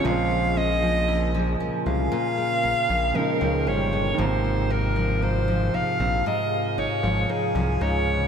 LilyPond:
<<
  \new Staff \with { instrumentName = "Alto saxophone" } { \time 4/4 \key aes \major \tempo 4 = 58 f''8 ees''4 r16 f''4~ f''16 bes'8 des''8 | c''8 bes'8 c''8 f''8 ees''8 des''8 aes'8 des''8 | }
  \new Staff \with { instrumentName = "Ambient pad" } { \time 4/4 \key aes \major << { aes''2 g''2 | f''1 | } \\ { <des bes'>1 | <c aes'>1 | } >> }
  \new Staff \with { instrumentName = "Synth bell" } { \time 4/4 \key aes \major r4 f'16 aes'4. r4 r16 | r1 | }
  \new Staff \with { instrumentName = "Nylon-string guitar" } { \clef bass \time 4/4 \key aes \major bes,16 aes16 des'16 f16 des'16 f16 des'16 aes16 bes,16 aes16 des'16 f16 des'16 f16 des'16 aes16 | aes,16 c'16 ees'16 f16 ees'16 f16 ees'16 c'16 aes,8 ees'16 f16 ees'16 f16 ees'8 | }
  \new Staff \with { instrumentName = "Grand piano" } { \clef bass \time 4/4 \key aes \major <des f aes c'>2. <des f aes ees'>4 | <c ees f bes>1 | }
  \new Staff \with { instrumentName = "Analog synth bass" } { \clef bass \time 4/4 \key aes \major bes,,4. c,16 c,16 r8 bes,,16 bes,,16 r16 des,16 g,,8 | aes,,4. bes,,16 bes,,16 r8 aes,,16 aes,,16 r16 c,16 des,8 | }
>>